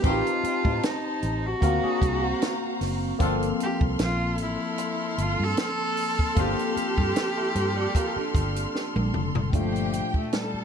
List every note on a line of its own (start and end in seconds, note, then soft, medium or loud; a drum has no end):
0.02 0.21 A1 loud
0.02 0.30 D#3 medium
0.02 1.59 C4 medium
0.02 0.30 C4 medium
0.02 1.59 D#4 medium
0.02 1.60 D#4 medium
0.02 0.30 G4 medium
0.02 1.58 B4 medium
0.02 1.59 C5 medium
0.02 1.59 A5 medium
0.02 kick loud
0.02 closed hi-hat medium
0.06 0.87 F4 loud
0.06 0.12 F#4 medium
0.13 1.64 G4 medium
0.27 closed hi-hat soft
0.44 muted fingered electric bass stroke soft
0.44 closed hi-hat medium
0.65 0.79 A2 loud
0.65 kick medium
0.83 1.48 D#4 loud
0.83 snare loud
0.83 closed hi-hat medium
1.23 1.53 A1 medium
1.23 closed hi-hat medium
1.46 2.82 F#4 loud
1.61 1.79 D2 medium
1.61 3.17 A#3 medium
1.61 3.17 C4 medium
1.61 1.83 F4 medium
1.61 3.17 F#4 medium
1.61 1.83 A#4 medium
1.61 3.17 F5 medium
1.61 3.18 F5 medium
1.61 3.17 A#5 medium
1.61 kick medium
1.61 closed hi-hat medium
1.65 3.19 F#4 medium
1.83 2.21 D4 medium
1.83 2.21 G#4 medium
1.83 muted fingered electric bass stroke soft
2.02 2.32 C2 medium
2.02 kick medium
2.02 closed hi-hat medium
2.22 3.17 C4 medium
2.22 3.16 F#4 medium
2.42 snare loud
2.42 closed hi-hat medium
2.81 3.12 F#1 medium
2.81 snare soft
2.81 open hi-hat medium
3.19 3.51 G1 loud
3.19 3.46 D3 medium
3.19 6.33 F3 medium
3.19 6.32 A#3 medium
3.19 3.46 C4 medium
3.19 6.33 C4 medium
3.19 3.46 F4 medium
3.19 9.49 A4 medium
3.19 6.34 A4 medium
3.19 9.49 C6 medium
3.19 9.49 F6 medium
3.19 kick loud
3.19 closed hi-hat medium
3.42 closed hi-hat soft
3.60 3.81 G4 medium
3.60 closed hi-hat medium
3.81 3.95 C2 medium
3.81 kick loud
3.99 4.39 A#1 loud
3.99 4.38 F4 loud
3.99 snare loud
3.99 closed hi-hat medium
4.38 4.56 A1 medium
4.38 closed hi-hat medium
4.42 5.24 E4 medium
4.78 closed hi-hat medium
5.18 5.35 G1 medium
5.18 closed hi-hat medium
5.22 5.45 F4 medium
5.40 5.54 G2 loud
5.40 5.60 A4 loud
5.57 6.41 A4 loud
5.57 snare loud
5.57 closed hi-hat medium
5.97 open hi-hat medium
6.19 kick medium
6.35 6.54 G1 loud
6.35 6.62 D3 medium
6.35 9.48 A#3 medium
6.35 6.62 C4 medium
6.35 9.49 C4 medium
6.35 6.62 F4 medium
6.35 9.50 F4 medium
6.35 kick loud
6.35 closed hi-hat medium
6.39 8.76 G4 loud
6.39 9.50 A4 medium
6.59 closed hi-hat soft
6.77 muted fingered electric bass stroke soft
6.77 closed hi-hat medium
6.98 7.12 G2 loud
6.98 kick loud
7.16 snare loud
7.16 closed hi-hat medium
7.37 7.55 E4 medium
7.37 7.55 A4 medium
7.55 7.86 G2 medium
7.55 7.76 G4 medium
7.55 7.76 C5 medium
7.55 closed hi-hat medium
7.77 7.94 A4 medium
7.77 7.94 D5 medium
7.95 8.16 F4 medium
7.95 8.16 A#4 medium
7.95 kick medium
7.95 closed hi-hat medium
8.16 9.31 D4 medium
8.16 9.31 G4 medium
8.16 muted fingered electric bass stroke soft
8.35 8.65 G1 medium
8.35 kick loud
8.35 closed hi-hat medium
8.56 closed hi-hat medium
8.75 snare medium
8.96 9.10 A#1 medium
8.96 high tom medium
9.14 9.30 F1 medium
9.14 mid tom medium
9.35 9.49 F#1 medium
9.35 floor tom medium
9.52 10.00 G1 loud
9.52 10.11 F3 medium
9.52 9.55 A3 soft
9.52 10.64 A3 medium
9.52 10.64 D4 medium
9.52 10.64 F4 medium
9.52 10.28 G4 loud
9.52 10.28 G5 loud
9.52 kick loud
9.52 closed hi-hat medium
9.59 10.64 A#2 medium
9.76 closed hi-hat soft
9.93 closed hi-hat medium
10.14 10.29 A3 medium
10.14 kick medium
10.29 10.35 A3 medium
10.29 10.64 A5 loud
10.29 closed hi-hat medium
10.33 10.64 G3 medium
10.33 10.64 A4 medium
10.33 snare medium
10.54 muted fingered electric bass stroke soft